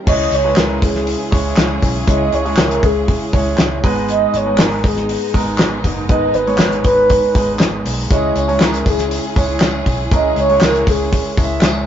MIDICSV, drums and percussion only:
0, 0, Header, 1, 2, 480
1, 0, Start_track
1, 0, Tempo, 502513
1, 66, Time_signature, 4, 2, 24, 8
1, 11332, End_track
2, 0, Start_track
2, 0, Title_t, "Drums"
2, 67, Note_on_c, 9, 36, 116
2, 68, Note_on_c, 9, 49, 108
2, 163, Note_off_c, 9, 36, 0
2, 164, Note_off_c, 9, 49, 0
2, 306, Note_on_c, 9, 46, 70
2, 308, Note_on_c, 9, 44, 61
2, 401, Note_off_c, 9, 46, 0
2, 403, Note_off_c, 9, 44, 0
2, 536, Note_on_c, 9, 39, 88
2, 543, Note_on_c, 9, 38, 114
2, 544, Note_on_c, 9, 46, 97
2, 546, Note_on_c, 9, 44, 62
2, 631, Note_off_c, 9, 39, 0
2, 639, Note_off_c, 9, 38, 0
2, 639, Note_off_c, 9, 46, 0
2, 642, Note_off_c, 9, 44, 0
2, 785, Note_on_c, 9, 36, 98
2, 785, Note_on_c, 9, 44, 65
2, 786, Note_on_c, 9, 46, 68
2, 880, Note_off_c, 9, 44, 0
2, 881, Note_off_c, 9, 36, 0
2, 881, Note_off_c, 9, 46, 0
2, 905, Note_on_c, 9, 38, 36
2, 1000, Note_off_c, 9, 38, 0
2, 1021, Note_on_c, 9, 44, 68
2, 1022, Note_on_c, 9, 46, 92
2, 1117, Note_off_c, 9, 44, 0
2, 1118, Note_off_c, 9, 46, 0
2, 1263, Note_on_c, 9, 44, 69
2, 1264, Note_on_c, 9, 36, 105
2, 1264, Note_on_c, 9, 46, 69
2, 1358, Note_off_c, 9, 44, 0
2, 1360, Note_off_c, 9, 36, 0
2, 1360, Note_off_c, 9, 46, 0
2, 1497, Note_on_c, 9, 39, 84
2, 1500, Note_on_c, 9, 46, 89
2, 1504, Note_on_c, 9, 38, 109
2, 1506, Note_on_c, 9, 44, 65
2, 1592, Note_off_c, 9, 39, 0
2, 1596, Note_off_c, 9, 46, 0
2, 1599, Note_off_c, 9, 38, 0
2, 1601, Note_off_c, 9, 44, 0
2, 1743, Note_on_c, 9, 36, 92
2, 1747, Note_on_c, 9, 44, 65
2, 1748, Note_on_c, 9, 46, 82
2, 1838, Note_off_c, 9, 36, 0
2, 1842, Note_off_c, 9, 44, 0
2, 1843, Note_off_c, 9, 46, 0
2, 1981, Note_on_c, 9, 44, 68
2, 1981, Note_on_c, 9, 46, 86
2, 1982, Note_on_c, 9, 36, 115
2, 2076, Note_off_c, 9, 46, 0
2, 2077, Note_off_c, 9, 44, 0
2, 2078, Note_off_c, 9, 36, 0
2, 2221, Note_on_c, 9, 46, 72
2, 2223, Note_on_c, 9, 44, 66
2, 2316, Note_off_c, 9, 46, 0
2, 2318, Note_off_c, 9, 44, 0
2, 2347, Note_on_c, 9, 46, 59
2, 2442, Note_off_c, 9, 46, 0
2, 2453, Note_on_c, 9, 39, 97
2, 2460, Note_on_c, 9, 38, 119
2, 2460, Note_on_c, 9, 46, 95
2, 2463, Note_on_c, 9, 44, 65
2, 2548, Note_off_c, 9, 39, 0
2, 2556, Note_off_c, 9, 38, 0
2, 2556, Note_off_c, 9, 46, 0
2, 2559, Note_off_c, 9, 44, 0
2, 2584, Note_on_c, 9, 44, 64
2, 2680, Note_off_c, 9, 44, 0
2, 2703, Note_on_c, 9, 36, 101
2, 2703, Note_on_c, 9, 44, 69
2, 2704, Note_on_c, 9, 46, 71
2, 2798, Note_off_c, 9, 36, 0
2, 2798, Note_off_c, 9, 44, 0
2, 2799, Note_off_c, 9, 46, 0
2, 2943, Note_on_c, 9, 44, 64
2, 2943, Note_on_c, 9, 46, 94
2, 2945, Note_on_c, 9, 36, 102
2, 3038, Note_off_c, 9, 44, 0
2, 3039, Note_off_c, 9, 46, 0
2, 3040, Note_off_c, 9, 36, 0
2, 3182, Note_on_c, 9, 44, 65
2, 3183, Note_on_c, 9, 46, 71
2, 3184, Note_on_c, 9, 36, 97
2, 3278, Note_off_c, 9, 44, 0
2, 3279, Note_off_c, 9, 36, 0
2, 3279, Note_off_c, 9, 46, 0
2, 3417, Note_on_c, 9, 39, 80
2, 3420, Note_on_c, 9, 46, 87
2, 3424, Note_on_c, 9, 38, 108
2, 3426, Note_on_c, 9, 44, 62
2, 3512, Note_off_c, 9, 39, 0
2, 3516, Note_off_c, 9, 46, 0
2, 3520, Note_off_c, 9, 38, 0
2, 3522, Note_off_c, 9, 44, 0
2, 3665, Note_on_c, 9, 36, 108
2, 3671, Note_on_c, 9, 44, 63
2, 3672, Note_on_c, 9, 46, 80
2, 3761, Note_off_c, 9, 36, 0
2, 3766, Note_off_c, 9, 44, 0
2, 3768, Note_off_c, 9, 46, 0
2, 3903, Note_on_c, 9, 46, 85
2, 3904, Note_on_c, 9, 44, 71
2, 3998, Note_off_c, 9, 46, 0
2, 3999, Note_off_c, 9, 44, 0
2, 4143, Note_on_c, 9, 46, 74
2, 4145, Note_on_c, 9, 44, 63
2, 4239, Note_off_c, 9, 46, 0
2, 4241, Note_off_c, 9, 44, 0
2, 4373, Note_on_c, 9, 39, 98
2, 4381, Note_on_c, 9, 38, 121
2, 4381, Note_on_c, 9, 46, 97
2, 4384, Note_on_c, 9, 44, 64
2, 4469, Note_off_c, 9, 39, 0
2, 4476, Note_off_c, 9, 38, 0
2, 4476, Note_off_c, 9, 46, 0
2, 4479, Note_off_c, 9, 44, 0
2, 4501, Note_on_c, 9, 46, 49
2, 4597, Note_off_c, 9, 46, 0
2, 4621, Note_on_c, 9, 44, 64
2, 4622, Note_on_c, 9, 36, 101
2, 4622, Note_on_c, 9, 46, 68
2, 4717, Note_off_c, 9, 44, 0
2, 4718, Note_off_c, 9, 36, 0
2, 4718, Note_off_c, 9, 46, 0
2, 4742, Note_on_c, 9, 38, 37
2, 4742, Note_on_c, 9, 44, 67
2, 4837, Note_off_c, 9, 38, 0
2, 4837, Note_off_c, 9, 44, 0
2, 4863, Note_on_c, 9, 44, 67
2, 4864, Note_on_c, 9, 46, 91
2, 4959, Note_off_c, 9, 44, 0
2, 4959, Note_off_c, 9, 46, 0
2, 5103, Note_on_c, 9, 36, 101
2, 5103, Note_on_c, 9, 44, 68
2, 5104, Note_on_c, 9, 46, 73
2, 5198, Note_off_c, 9, 44, 0
2, 5199, Note_off_c, 9, 36, 0
2, 5199, Note_off_c, 9, 46, 0
2, 5334, Note_on_c, 9, 39, 84
2, 5337, Note_on_c, 9, 46, 90
2, 5341, Note_on_c, 9, 38, 107
2, 5343, Note_on_c, 9, 44, 62
2, 5429, Note_off_c, 9, 39, 0
2, 5433, Note_off_c, 9, 46, 0
2, 5437, Note_off_c, 9, 38, 0
2, 5439, Note_off_c, 9, 44, 0
2, 5580, Note_on_c, 9, 36, 81
2, 5582, Note_on_c, 9, 44, 65
2, 5583, Note_on_c, 9, 46, 84
2, 5675, Note_off_c, 9, 36, 0
2, 5678, Note_off_c, 9, 44, 0
2, 5679, Note_off_c, 9, 46, 0
2, 5819, Note_on_c, 9, 44, 70
2, 5819, Note_on_c, 9, 46, 89
2, 5820, Note_on_c, 9, 36, 121
2, 5914, Note_off_c, 9, 46, 0
2, 5915, Note_off_c, 9, 36, 0
2, 5915, Note_off_c, 9, 44, 0
2, 6055, Note_on_c, 9, 46, 68
2, 6057, Note_on_c, 9, 44, 67
2, 6151, Note_off_c, 9, 46, 0
2, 6153, Note_off_c, 9, 44, 0
2, 6183, Note_on_c, 9, 46, 55
2, 6279, Note_off_c, 9, 46, 0
2, 6286, Note_on_c, 9, 39, 95
2, 6293, Note_on_c, 9, 38, 117
2, 6293, Note_on_c, 9, 46, 93
2, 6296, Note_on_c, 9, 44, 70
2, 6381, Note_off_c, 9, 39, 0
2, 6389, Note_off_c, 9, 38, 0
2, 6389, Note_off_c, 9, 46, 0
2, 6392, Note_off_c, 9, 44, 0
2, 6416, Note_on_c, 9, 44, 66
2, 6512, Note_off_c, 9, 44, 0
2, 6534, Note_on_c, 9, 44, 64
2, 6535, Note_on_c, 9, 46, 68
2, 6539, Note_on_c, 9, 36, 104
2, 6630, Note_off_c, 9, 44, 0
2, 6631, Note_off_c, 9, 46, 0
2, 6635, Note_off_c, 9, 36, 0
2, 6777, Note_on_c, 9, 44, 65
2, 6778, Note_on_c, 9, 46, 95
2, 6783, Note_on_c, 9, 36, 105
2, 6873, Note_off_c, 9, 44, 0
2, 6874, Note_off_c, 9, 46, 0
2, 6878, Note_off_c, 9, 36, 0
2, 7018, Note_on_c, 9, 44, 66
2, 7019, Note_on_c, 9, 46, 68
2, 7021, Note_on_c, 9, 36, 107
2, 7114, Note_off_c, 9, 44, 0
2, 7115, Note_off_c, 9, 46, 0
2, 7117, Note_off_c, 9, 36, 0
2, 7253, Note_on_c, 9, 39, 86
2, 7256, Note_on_c, 9, 46, 91
2, 7260, Note_on_c, 9, 38, 109
2, 7262, Note_on_c, 9, 44, 65
2, 7348, Note_off_c, 9, 39, 0
2, 7352, Note_off_c, 9, 46, 0
2, 7356, Note_off_c, 9, 38, 0
2, 7358, Note_off_c, 9, 44, 0
2, 7503, Note_on_c, 9, 44, 59
2, 7504, Note_on_c, 9, 46, 83
2, 7599, Note_off_c, 9, 44, 0
2, 7600, Note_off_c, 9, 46, 0
2, 7742, Note_on_c, 9, 36, 115
2, 7743, Note_on_c, 9, 46, 92
2, 7744, Note_on_c, 9, 44, 68
2, 7748, Note_on_c, 9, 54, 46
2, 7838, Note_off_c, 9, 36, 0
2, 7839, Note_off_c, 9, 46, 0
2, 7840, Note_off_c, 9, 44, 0
2, 7843, Note_off_c, 9, 54, 0
2, 7982, Note_on_c, 9, 46, 70
2, 7984, Note_on_c, 9, 44, 65
2, 7987, Note_on_c, 9, 54, 58
2, 8078, Note_off_c, 9, 46, 0
2, 8080, Note_off_c, 9, 44, 0
2, 8083, Note_off_c, 9, 54, 0
2, 8109, Note_on_c, 9, 46, 56
2, 8205, Note_off_c, 9, 46, 0
2, 8214, Note_on_c, 9, 39, 89
2, 8221, Note_on_c, 9, 38, 127
2, 8221, Note_on_c, 9, 46, 91
2, 8224, Note_on_c, 9, 44, 70
2, 8228, Note_on_c, 9, 54, 81
2, 8309, Note_off_c, 9, 39, 0
2, 8317, Note_off_c, 9, 38, 0
2, 8317, Note_off_c, 9, 46, 0
2, 8319, Note_off_c, 9, 44, 0
2, 8324, Note_off_c, 9, 54, 0
2, 8344, Note_on_c, 9, 46, 51
2, 8347, Note_on_c, 9, 44, 63
2, 8440, Note_off_c, 9, 46, 0
2, 8443, Note_off_c, 9, 44, 0
2, 8462, Note_on_c, 9, 36, 99
2, 8463, Note_on_c, 9, 44, 67
2, 8464, Note_on_c, 9, 46, 67
2, 8467, Note_on_c, 9, 54, 52
2, 8558, Note_off_c, 9, 36, 0
2, 8558, Note_off_c, 9, 44, 0
2, 8559, Note_off_c, 9, 46, 0
2, 8563, Note_off_c, 9, 54, 0
2, 8584, Note_on_c, 9, 38, 38
2, 8584, Note_on_c, 9, 44, 70
2, 8598, Note_on_c, 9, 54, 30
2, 8680, Note_off_c, 9, 38, 0
2, 8680, Note_off_c, 9, 44, 0
2, 8693, Note_off_c, 9, 54, 0
2, 8703, Note_on_c, 9, 44, 61
2, 8704, Note_on_c, 9, 46, 97
2, 8713, Note_on_c, 9, 54, 49
2, 8799, Note_off_c, 9, 44, 0
2, 8799, Note_off_c, 9, 46, 0
2, 8809, Note_off_c, 9, 54, 0
2, 8943, Note_on_c, 9, 36, 106
2, 8944, Note_on_c, 9, 44, 69
2, 8945, Note_on_c, 9, 46, 68
2, 8953, Note_on_c, 9, 54, 58
2, 9039, Note_off_c, 9, 36, 0
2, 9039, Note_off_c, 9, 44, 0
2, 9040, Note_off_c, 9, 46, 0
2, 9049, Note_off_c, 9, 54, 0
2, 9172, Note_on_c, 9, 39, 88
2, 9175, Note_on_c, 9, 46, 94
2, 9179, Note_on_c, 9, 38, 109
2, 9181, Note_on_c, 9, 44, 65
2, 9186, Note_on_c, 9, 54, 92
2, 9267, Note_off_c, 9, 39, 0
2, 9271, Note_off_c, 9, 46, 0
2, 9275, Note_off_c, 9, 38, 0
2, 9277, Note_off_c, 9, 44, 0
2, 9281, Note_off_c, 9, 54, 0
2, 9420, Note_on_c, 9, 36, 87
2, 9421, Note_on_c, 9, 44, 67
2, 9422, Note_on_c, 9, 46, 80
2, 9432, Note_on_c, 9, 54, 54
2, 9515, Note_off_c, 9, 36, 0
2, 9517, Note_off_c, 9, 44, 0
2, 9518, Note_off_c, 9, 46, 0
2, 9528, Note_off_c, 9, 54, 0
2, 9661, Note_on_c, 9, 46, 93
2, 9662, Note_on_c, 9, 36, 115
2, 9662, Note_on_c, 9, 44, 70
2, 9673, Note_on_c, 9, 54, 46
2, 9757, Note_off_c, 9, 36, 0
2, 9757, Note_off_c, 9, 46, 0
2, 9758, Note_off_c, 9, 44, 0
2, 9768, Note_off_c, 9, 54, 0
2, 9898, Note_on_c, 9, 46, 72
2, 9901, Note_on_c, 9, 44, 63
2, 9908, Note_on_c, 9, 54, 54
2, 9994, Note_off_c, 9, 46, 0
2, 9996, Note_off_c, 9, 44, 0
2, 10003, Note_off_c, 9, 54, 0
2, 10026, Note_on_c, 9, 46, 58
2, 10121, Note_off_c, 9, 46, 0
2, 10133, Note_on_c, 9, 39, 92
2, 10140, Note_on_c, 9, 38, 120
2, 10140, Note_on_c, 9, 46, 86
2, 10143, Note_on_c, 9, 44, 71
2, 10147, Note_on_c, 9, 54, 93
2, 10228, Note_off_c, 9, 39, 0
2, 10236, Note_off_c, 9, 38, 0
2, 10236, Note_off_c, 9, 46, 0
2, 10238, Note_off_c, 9, 44, 0
2, 10242, Note_off_c, 9, 54, 0
2, 10264, Note_on_c, 9, 44, 65
2, 10359, Note_off_c, 9, 44, 0
2, 10382, Note_on_c, 9, 44, 68
2, 10383, Note_on_c, 9, 36, 103
2, 10383, Note_on_c, 9, 46, 68
2, 10388, Note_on_c, 9, 54, 52
2, 10477, Note_off_c, 9, 44, 0
2, 10478, Note_off_c, 9, 46, 0
2, 10479, Note_off_c, 9, 36, 0
2, 10484, Note_off_c, 9, 54, 0
2, 10510, Note_on_c, 9, 54, 30
2, 10606, Note_off_c, 9, 54, 0
2, 10626, Note_on_c, 9, 54, 52
2, 10627, Note_on_c, 9, 36, 103
2, 10627, Note_on_c, 9, 44, 64
2, 10628, Note_on_c, 9, 46, 91
2, 10722, Note_off_c, 9, 54, 0
2, 10723, Note_off_c, 9, 36, 0
2, 10723, Note_off_c, 9, 44, 0
2, 10723, Note_off_c, 9, 46, 0
2, 10865, Note_on_c, 9, 36, 105
2, 10865, Note_on_c, 9, 44, 68
2, 10865, Note_on_c, 9, 54, 56
2, 10866, Note_on_c, 9, 46, 73
2, 10960, Note_off_c, 9, 36, 0
2, 10961, Note_off_c, 9, 44, 0
2, 10961, Note_off_c, 9, 54, 0
2, 10962, Note_off_c, 9, 46, 0
2, 11091, Note_on_c, 9, 39, 86
2, 11095, Note_on_c, 9, 46, 95
2, 11098, Note_on_c, 9, 38, 113
2, 11100, Note_on_c, 9, 44, 63
2, 11105, Note_on_c, 9, 54, 97
2, 11187, Note_off_c, 9, 39, 0
2, 11190, Note_off_c, 9, 46, 0
2, 11194, Note_off_c, 9, 38, 0
2, 11196, Note_off_c, 9, 44, 0
2, 11200, Note_off_c, 9, 54, 0
2, 11332, End_track
0, 0, End_of_file